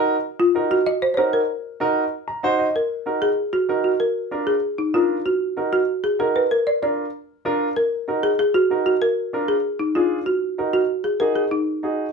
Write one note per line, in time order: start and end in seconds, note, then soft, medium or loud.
0.00 0.14 D#4 medium
0.00 0.15 F#4 medium
0.00 0.15 A#4 loud
0.40 0.69 F4 medium
0.55 0.77 D#4 medium
0.55 0.77 F#4 medium
0.55 0.77 A#4 medium
0.71 0.86 F#4 medium
0.86 1.01 D#5 loud
1.02 1.13 C5 loud
1.14 1.40 D#4 medium
1.14 1.40 F#4 medium
1.14 1.34 C5 medium
1.14 1.18 C#5 medium
1.18 1.40 A#4 medium
1.33 2.39 A#4 medium
1.80 2.02 D#4 medium
1.80 2.02 F#4 medium
1.80 2.03 A#4 medium
2.28 2.42 A#5 medium
2.43 2.65 D#4 medium
2.43 2.65 F#4 medium
2.43 2.66 C5 loud
2.43 2.58 F#5 medium
2.59 2.74 D#5 medium
2.76 3.24 A#4 medium
3.06 3.28 D#4 medium
3.06 3.28 F#4 medium
3.06 3.28 A#4 medium
3.22 3.51 G#4 medium
3.53 3.82 F#4 medium
3.69 3.91 D#4 medium
3.69 3.91 F#4 medium
3.69 3.91 A#4 medium
3.84 3.91 F#4 medium
4.00 4.29 A#4 medium
4.31 4.53 D4 medium
4.31 4.54 F4 medium
4.31 4.54 A#4 medium
4.47 4.76 G#4 medium
4.78 4.95 D#4 medium
4.94 5.16 D4 medium
4.94 5.16 F4 medium
4.94 5.16 A#4 medium
5.26 5.72 F#4 medium
5.57 5.79 D#4 medium
5.57 5.79 F#4 medium
5.57 5.79 A#4 medium
5.73 6.05 F#4 medium
6.04 6.20 G#4 medium
6.19 6.41 D#4 medium
6.19 6.41 F#4 medium
6.19 6.34 A#4 medium
6.19 6.42 A#4 medium
6.36 6.52 B4 medium
6.51 6.66 A#4 medium
6.67 6.74 D5 medium
6.82 7.04 D4 medium
6.82 7.04 F4 medium
6.82 7.05 A#4 medium
6.82 7.26 D5 medium
7.45 7.67 D4 medium
7.45 7.67 F4 medium
7.45 7.67 A#4 medium
7.76 8.25 A#4 loud
8.08 8.30 D#4 medium
8.08 8.30 F#4 medium
8.08 8.30 A#4 medium
8.23 8.30 G#4 medium
8.39 8.46 G#4 medium
8.54 8.85 F#4 medium
8.70 8.92 D#4 medium
8.70 8.93 F#4 medium
8.70 8.93 A#4 medium
8.86 9.01 F#4 medium
9.02 9.31 A#4 loud
9.33 9.55 D4 medium
9.33 9.55 F4 medium
9.33 9.55 A#4 medium
9.48 9.81 G#4 medium
9.79 9.94 D#4 medium
9.95 10.18 D4 medium
9.95 10.17 F4 medium
9.95 10.18 F4 medium
9.95 10.18 G#4 medium
10.26 10.70 F#4 medium
10.58 10.80 D#4 medium
10.58 10.80 F#4 medium
10.58 10.80 A#4 medium
10.73 11.03 F#4 medium
11.04 11.21 G#4 medium
11.20 11.43 D#4 medium
11.20 11.43 F#4 medium
11.20 11.43 G#4 medium
11.20 11.35 A#4 medium
11.36 11.51 G#4 medium
11.51 11.95 D#4 medium
11.83 12.05 D#4 medium
11.83 12.05 F#4 medium
11.83 12.06 G#4 medium